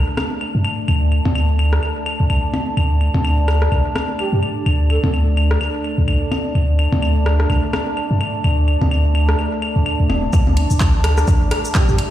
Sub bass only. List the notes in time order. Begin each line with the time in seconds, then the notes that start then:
0.55 G2
0.88 D2
1.26 D2
2.20 D2
2.30 C2
2.77 D2
3.14 D2
3.72 C2
4.33 G2
4.66 D2
5.04 D2
5.98 D2
6.08 C2
6.55 D2
6.92 D2
7.50 C2
8.11 G2
8.44 D2
8.81 D2
9.76 D2
10.00 D2
10.10 D1
10.33 D2
10.71 D2
11.28 C2
11.89 G2